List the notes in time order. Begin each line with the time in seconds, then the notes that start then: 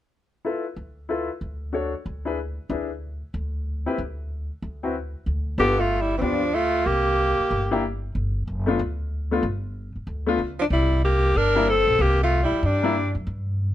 0.45 E4 F4 A4 B4
0.76 D2
1.09 E4 F4 A4 B4
1.41 D2
1.73 D4 F#4 A4 C#5
2.06 D2
2.25 D4 E4 G#4 B4
2.70 D2 D4 E4 G#4 B4
3.34 D2
3.86 C4 E4 G4 B4
3.98 D2
4.62 D2
4.83 C4 E4 F#4 B4
5.26 D2
5.58 G1 B3 D4 F4 G4 A4
5.80 A3 F4
6.01 G3 E4
6.17 E3 C4
6.21 D2 F3 B3 D4 F4 G4
6.54 A3 F4
6.86 C2 A#3 G4
7.39 muted upright bass stroke
7.51 G1
7.71 A#3 D4 E4 G4
8.15 G1
8.47 F#1
8.66 A3 B3 D4 F4
8.79 D2
9.31 A3 B3 D4 F4
9.43 G1
9.96 muted upright bass stroke
10.07 D2
10.27 A3 B3 D4 F4
10.38 C#2
10.59 F3 D4
10.70 C2 G3 E4
11.05 A#3 G4
11.34 G1 D4 A#4
11.55 G3 A#3 D4 E4
11.69 C4 A4
11.87 A#1
11.99 C2 A#3 G4
12.23 A3 F4
12.43 G3 E4
12.52 muted upright bass stroke
12.63 G2 G3 D4
12.83 G3 A#3 D4 E4
13.15 F#2
13.27 G2